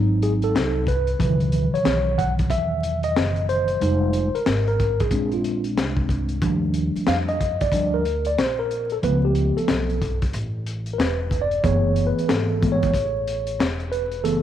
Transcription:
0.00 0.52 G#1 loud
0.00 0.83 F#3 medium
0.00 0.84 C4 medium
0.00 0.84 D#4 medium
0.22 0.32 G#4 medium
0.22 closed hi-hat medium
0.42 0.85 A4 medium
0.42 closed hi-hat soft
0.55 1.17 C2 medium
0.55 snare loud
0.55 closed hi-hat medium
0.87 1.77 B4 loud
0.87 kick medium
0.87 closed hi-hat medium
1.07 closed hi-hat soft
1.19 1.71 C#2 medium
1.19 3.77 B2 medium
1.19 3.77 D#3 medium
1.19 3.77 E3 medium
1.19 3.77 F#3 soft
1.19 kick loud
1.19 closed hi-hat medium
1.40 closed hi-hat soft
1.52 closed hi-hat medium
1.74 2.20 C#5 loud
1.74 muted upright bass stroke soft
1.74 closed hi-hat soft
1.85 2.47 B1 medium
1.85 snare loud
1.85 closed hi-hat medium
2.18 2.33 F#5 medium
2.18 kick medium
2.18 closed hi-hat medium
2.39 kick medium
2.39 closed hi-hat medium
2.50 3.12 E2 medium
2.50 3.00 E5 loud
2.50 kick medium
2.50 closed hi-hat medium
2.83 closed hi-hat medium
3.03 3.45 D#5 loud
3.03 closed hi-hat soft
3.16 3.78 F#1 medium
3.16 snare loud
3.16 closed hi-hat medium
3.36 closed hi-hat soft
3.49 4.37 C5 loud
3.49 closed hi-hat medium
3.68 closed hi-hat soft
3.80 4.32 F1 medium
3.80 4.28 G3 medium
3.80 4.28 G#3 medium
3.80 4.28 D#4 medium
3.80 closed hi-hat medium
4.13 closed hi-hat medium
4.35 4.67 A#4 medium
4.35 muted upright bass stroke soft
4.35 closed hi-hat soft
4.46 5.09 G#1 medium
4.46 snare loud
4.46 closed hi-hat medium
4.67 5.01 A#4 medium
4.67 closed hi-hat soft
4.80 kick medium
4.80 closed hi-hat medium
5.00 5.34 G#4 medium
5.00 kick medium
5.00 closed hi-hat soft
5.11 5.77 A#1 medium
5.11 6.38 G#3 medium
5.11 6.38 C4 soft
5.11 6.39 D4 medium
5.11 kick medium
5.11 closed hi-hat medium
5.32 5.63 F4 medium
5.32 closed hi-hat soft
5.44 closed hi-hat medium
5.64 closed hi-hat soft
5.77 6.39 C2 medium
5.77 snare loud
5.77 closed hi-hat medium
5.97 kick medium
6.09 kick medium
6.09 closed hi-hat medium
6.29 closed hi-hat soft
6.42 6.93 D#2 loud
6.42 7.36 F3 medium
6.42 7.36 G3 soft
6.42 7.36 A3 soft
6.42 7.36 D4 medium
6.42 kick loud
6.42 closed hi-hat medium
6.74 closed hi-hat medium
6.96 muted upright bass stroke soft
6.96 closed hi-hat soft
7.07 7.69 F2 medium
7.07 7.17 F5 medium
7.07 snare loud
7.07 closed hi-hat medium
7.28 7.62 D#5 medium
7.28 closed hi-hat soft
7.41 kick medium
7.41 closed hi-hat medium
7.61 7.95 D5 medium
7.61 kick loud
7.61 closed hi-hat medium
7.72 8.34 D2 medium
7.72 8.02 F3 soft
7.72 8.02 G3 soft
7.72 8.02 A3 soft
7.72 8.02 D4 medium
7.72 kick medium
7.72 closed hi-hat medium
7.94 8.27 A#4 medium
8.05 closed hi-hat medium
8.25 8.39 D5 medium
8.25 closed hi-hat soft
8.38 9.00 A#1 medium
8.38 8.60 C5 medium
8.38 snare loud
8.38 closed hi-hat medium
8.59 8.92 A#4 medium
8.71 closed hi-hat medium
8.90 8.97 A4 medium
8.90 closed hi-hat soft
9.03 9.54 C#2 loud
9.03 9.97 F3 medium
9.03 9.97 A3 soft
9.03 9.97 B3 medium
9.03 9.25 B4 medium
9.03 closed hi-hat medium
9.25 9.58 G4 medium
9.35 closed hi-hat medium
9.57 10.18 A4 medium
9.57 muted upright bass stroke soft
9.57 closed hi-hat soft
9.68 10.30 B1 medium
9.68 snare loud
9.68 closed hi-hat medium
9.90 closed hi-hat soft
10.02 kick medium
10.02 closed hi-hat medium
10.22 kick medium
10.22 closed hi-hat medium
10.33 10.96 A1 medium
10.33 closed hi-hat medium
10.66 closed hi-hat medium
10.86 closed hi-hat medium
10.93 10.99 A#4 medium
10.98 11.61 E1 medium
10.98 11.43 B4 medium
10.98 snare loud
10.98 closed hi-hat medium
11.31 kick medium
11.31 closed hi-hat medium
11.42 11.64 D5 medium
11.51 closed hi-hat soft
11.63 12.15 F#1 loud
11.63 12.60 E3 medium
11.63 12.61 A3 medium
11.63 12.61 B3 medium
11.63 14.21 G#4 medium
11.63 12.09 C#5 medium
11.63 kick loud
11.63 closed hi-hat medium
11.96 closed hi-hat medium
12.07 12.29 B4 medium
12.18 muted upright bass stroke soft
12.18 closed hi-hat soft
12.28 12.91 G#1 medium
12.28 12.69 A4 medium
12.28 snare loud
12.28 closed hi-hat medium
12.61 12.91 E3 medium
12.61 12.91 G#3 soft
12.61 12.91 A3 soft
12.61 12.91 B3 medium
12.61 kick medium
12.61 closed hi-hat medium
12.72 13.66 C#5 medium
12.83 kick medium
12.83 closed hi-hat medium
12.94 13.56 A1 medium
12.94 kick medium
12.94 closed hi-hat medium
13.28 closed hi-hat medium
13.47 closed hi-hat medium
13.59 14.25 E1 medium
13.59 snare loud
13.59 closed hi-hat medium
13.80 closed hi-hat soft
13.91 14.25 B4 medium
13.91 closed hi-hat medium
14.12 closed hi-hat soft
14.24 14.42 F#1 loud
14.24 14.42 E3 medium
14.24 14.42 A3 medium
14.24 14.42 B3 medium
14.24 14.42 G#4 medium
14.24 14.42 A4 medium
14.24 closed hi-hat medium

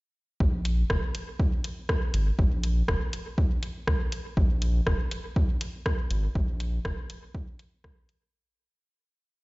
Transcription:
0.40 0.84 A#1 loud
0.40 kick loud
0.65 closed hi-hat medium
0.90 0.99 F1 medium
0.90 kick loud
0.90 cross-stick medium
1.15 closed hi-hat medium
1.40 kick loud
1.64 closed hi-hat medium
1.89 kick loud
1.89 cross-stick medium
2.14 2.31 G#1 medium
2.14 closed hi-hat medium
2.39 2.83 A#1 loud
2.39 kick loud
2.63 closed hi-hat medium
2.88 2.97 F1 medium
2.88 kick loud
2.88 cross-stick medium
3.13 closed hi-hat medium
3.38 kick loud
3.63 closed hi-hat medium
3.87 3.96 C#2 medium
3.87 kick loud
3.87 cross-stick medium
4.12 closed hi-hat medium
4.37 4.81 A#1 loud
4.37 kick loud
4.62 closed hi-hat medium
4.87 4.96 F1 medium
4.87 kick loud
4.87 cross-stick medium
5.11 closed hi-hat medium
5.36 kick loud
5.61 closed hi-hat medium
5.86 kick loud
5.86 cross-stick medium
6.11 6.28 G#1 medium
6.11 closed hi-hat medium
6.35 6.79 A#1 loud
6.35 kick loud
6.60 closed hi-hat medium
6.85 6.94 F1 medium
6.85 kick loud
6.85 cross-stick medium
7.10 closed hi-hat medium
7.35 kick loud
7.59 closed hi-hat medium
7.84 7.93 C#2 medium
7.84 kick loud
7.84 cross-stick medium
8.09 closed hi-hat medium

